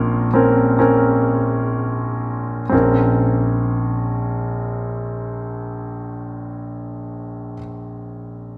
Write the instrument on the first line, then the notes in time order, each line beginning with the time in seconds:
grand piano
Already playing: A#1 A#2 C4 C#4 A#4
0.34 C4 C#4 A#4
0.79 C4 C#4 A#4
2.69 A#1 C4 C#4
2.74 A#4